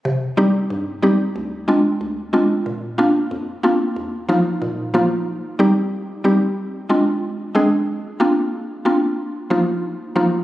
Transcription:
\new Staff \with { instrumentName = "Synth pluck" } { \time 4/4 \key c \minor \tempo 4 = 92 << { r8 <g c' ees' g'>8 r8 <g c' ees' g'>8 r8 <aes c' d' f'>8 r8 <aes c' d' f'>8 | r8 <bes c' d' f'>8 r8 <bes c' d' f'>8 r8 <f bes ees' f'>8 r8 <f bes ees' f'>8 | r8 <g c' ees' g'>8 r8 <g c' ees' g'>8 r8 <aes c' d' f'>8 r8 <aes c' d' aes'>8 | r8 <bes c' d' f'>8 r8 <bes c' d' f'>8 r8 <f bes ees' f'>8 r8 <f bes ees' f'>8 | } \\ { c4 g,4 d,4 d,4 | bes,4 f,4 ees,4 bes,4 | r1 | r1 | } >> }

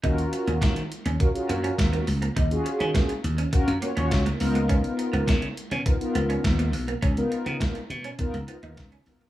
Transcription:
<<
  \new Staff \with { instrumentName = "Analog polysynth" } { \time 4/4 \key ees \minor \tempo 4 = 103 <des' f' ges' bes'>4~ <des' f' ges' bes'>16 r8. <des' f' ges' bes'>16 <des' f' ges' aes' bes'>4~ <des' f' ges' aes' bes'>16 r8 | r16 <des' f' ges' aes'>4 r8. <des' f' ges' bes'>16 r16 <des' f' ges' des''>16 <des' f' ges' des''>8 r16 <ces' ees' f' bes'>8~ | <ces' ees' f' bes'>4 r4 <ces' ees' f' bes'>16 <ces' ees' f' bes'>4~ <ces' ees' f' bes'>16 r8 | r16 <ces' ees' f' bes'>4 r8. <ces' ees' f' bes'>16 r16 <ces' ees' f' bes'>16 <ces' ees' f' bes'>8 r16 <ces' ees' f' bes'>16 r16 | }
  \new Staff \with { instrumentName = "Clean electric guitar" } { \time 4/4 \key ees \minor ees'16 r8 des'16 bes16 r8 des'16 r8 bes16 des'16 r16 bes16 r16 bes16 | ees'16 r8 des'16 bes16 r8 des'16 r8 bes16 des'16 r16 bes16 r16 bes16 | des'16 r8 ces'16 bes16 r8 des'16 r8 ces'16 des'16 r16 bes16 r16 bes16 | des'16 r8 ces'16 bes16 r8 des'16 r8 ces'16 ees'16 r16 des'16 r16 bes16 | }
  \new Staff \with { instrumentName = "Slap bass" } { \clef bass \time 4/4 \key ees \minor ees,8 r16 ees,16 ees8 r16 ees,16 r8 ges,8 ees,8 des,8 | ees,8 r16 ees16 r8 ees,8 r16 ges,16 r16 ees,16 des,8 des,8~ | des,8 r16 des,16 des8 r16 ces16 r8 des,8 ees,8 ces,8 | des,8 r16 des16 r8 ces8 r16 des,16 r16 ees,16 des,8 ces,8 | }
  \new DrumStaff \with { instrumentName = "Drums" } \drummode { \time 4/4 <hh bd>16 hh16 hh16 hh16 <hh bd sn>16 hh16 hh16 hh16 <hh bd>16 hh16 hh16 hh16 <hh bd sn>16 hh16 hho16 hh16 | <hh bd>16 hh16 hh16 hh16 <hh bd sn>16 hh16 hh16 hh16 <hh bd>16 hh16 hh16 hh16 <hh bd sn>16 hh16 hho16 hh16 | <hh bd>16 hh16 hh16 hh16 <hh bd sn>16 hh16 hh16 hh16 <hh bd>16 hh16 hh16 hh16 <hh bd sn>16 hh16 hho16 hh16 | <hh bd>16 hh16 hh16 hh16 <hh bd sn>16 hh16 hh16 hh16 <hh bd>16 hh16 hh16 hh16 <hh bd sn>16 hh16 hho16 hh16 | }
>>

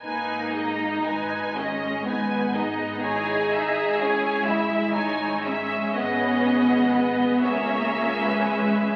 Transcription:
<<
  \new Staff \with { instrumentName = "Violin section" } { \time 6/8 \key gis \minor \tempo 4. = 40 gis''8 dis''8 gis''8 dis''8 gis''8 dis''8 | gis''8 e''8 gis''8 e''8 gis''8 e''8 | dis''4. e''4. | }
  \new Staff \with { instrumentName = "Viola section" } { \time 6/8 \key gis \minor << { b'8 gis'8 b'8 gis'8 b'8 gis'8 | cis''8 e''8 cis''8 e''8 cis''8 e''8 | b'4. cis''8. b'8. | } \\ { dis'8 gis'8 dis'8 gis'8 dis'8 gis'8 | e'8 gis'8 e'8 gis'8 e'8 gis'8 | gis'4. gis'4. | } >> }
  \new Staff \with { instrumentName = "Violin section" } { \time 6/8 \key gis \minor dis'4. cis'8 b8 dis'8 | gis'4. e'8 dis'8 cis'8 | b4. cis'4. | }
  \new Staff \with { instrumentName = "Cello section" } { \time 6/8 \key gis \minor ais4 gis4. b8 | dis'4 cis'8 gis4. | cis'4 b8 ais4 gis8 | }
  \new Staff \with { instrumentName = "Double bass section" } { \clef bass \time 6/8 \key gis \minor gis,,2.~ | gis,,2. | gis,,4. cis,4. | }
>>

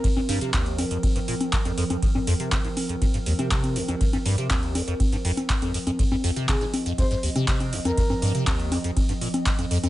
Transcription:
<<
  \new Staff \with { instrumentName = "Soft synth lead" } { \time 4/4 \key c \phrygian \tempo 4 = 121 r1 | r1 | r1 | r4 aes'16 r8. c''16 c''16 r4 r16 bes'16~ |
bes'8. r2. r16 | }
  \new Staff \with { instrumentName = "Ambient pad" } { \time 4/4 \key c \phrygian << { bes'1~ | bes'1~ | bes'1 | ees''1~ |
ees''1 | } \\ { <f c'>1~ | <f c'>1~ | <f c'>1~ | <f c'>1~ |
<f c'>1 | } >> }
  \new Staff \with { instrumentName = "Acid bass" } { \clef bass \time 4/4 \key c \phrygian f,16 g,16 g,16 c16 ees,8 f,16 f,16 r16 g,16 bes,16 r8 f,16 f,16 f,16 | f,16 g,16 f,16 c16 r16 aes,16 r16 f,16 f,16 g,16 ees,16 c16 c8 f,16 f,16 | f,16 g,16 g,16 c16 ees,8 f,16 f,16 r16 g,16 f,16 r8 f,16 f,16 f,16 | f,16 g,16 f,16 c16 c16 aes,16 r16 f,16 f,16 g,16 ees,16 c16 c8 f,16 f,16 |
f,16 g,16 g,16 c16 ees,8 f,16 f,16 r16 g,16 bes,16 r8 f,16 f,16 f,16 | }
  \new DrumStaff \with { instrumentName = "Drums" } \drummode { \time 4/4 <bd cymr>16 cgho16 hho16 hh16 <hc cgho bd cymr>16 hh16 <cgho hho>16 hh16 <cgho bd cymr>16 hh16 hho16 <cgho hh>16 <hc bd cymr>16 <cgho hh>16 hho16 <cgho hh>16 | <bd cymr>16 cgho16 hho16 hh16 <hc cgho bd cymr>16 hh16 <cgho hho>16 hh16 <cgho bd cymr>16 hh16 hho16 <cgho hh>16 <hc bd cymr>16 <cgho hh>16 hho16 <cgho hh>16 | <bd cymr>16 <cgho hh>16 hho16 hh16 <hc cgho bd cymr>16 hh16 <cgho hho>16 hh16 <cgho bd cymr>16 hh16 hho16 <cgho hh>16 <hc bd cymr>16 <cgho hh>16 hho16 <cgho hh>16 | <bd cymr>16 cgho16 hho16 hh16 <hc cgho bd cymr>16 hh16 <cgho hho>16 hh16 <cgho bd cymr>16 hh16 hho16 <cgho hh>16 <hc bd cymr>16 <cgho hh>16 hho16 <cgho hh>16 |
<bd cymr>16 cgho16 hho16 hh16 <hc cgho bd cymr>16 hh16 <cgho hho>16 hh16 <cgho bd cymr>16 hh16 hho16 <cgho hh>16 <hc bd cymr>16 <cgho hh>16 hho16 <cgho hh>16 | }
>>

